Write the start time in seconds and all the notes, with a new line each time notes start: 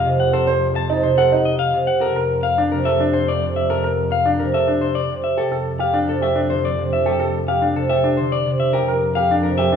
Already playing: F2 C4
0.05 C3
0.20 F#5
0.33 A4 C5
0.47 C5
0.76 A5
0.89 C4 D#4
1.03 C3 C5
1.18 A4 F#5
1.32 D#4
1.45 D#5
1.59 F5
1.73 C3
1.87 F#5
2.01 F2 A4 A#4
2.16 A#4
2.43 F5
2.58 A#3 D4
2.72 C3 A#4
2.85 A4 E5
3.00 D4
3.13 C5
3.28 D5
3.42 C3
3.56 E5
3.70 A4 A#4
3.84 A#4
4.12 F5
4.26 A#3 D4
4.40 C3 A#4
4.54 A4 E5
4.68 D4
4.81 C5
4.95 D5
5.10 C3
5.24 E5
5.37 F2 G4 A4
5.52 A4
5.79 G4 F5
5.94 A3 D4
6.08 C3 A4
6.22 G4 E5
6.35 D4
6.50 D3 C5
6.65 D5
6.78 C3
6.93 E5
7.06 G4 A4
7.20 A4
7.48 G4 F5
7.62 A3 D4
7.76 C3 A4
7.89 G4 E5
8.04 D4
8.17 D3 C5
8.32 D5
8.46 C3
8.60 E5
8.73 F2 G4 A#4
8.88 A#4
9.15 G4 F5
9.31 A#3 D4
9.43 C3 A#4
9.58 G4 E5
9.72 D4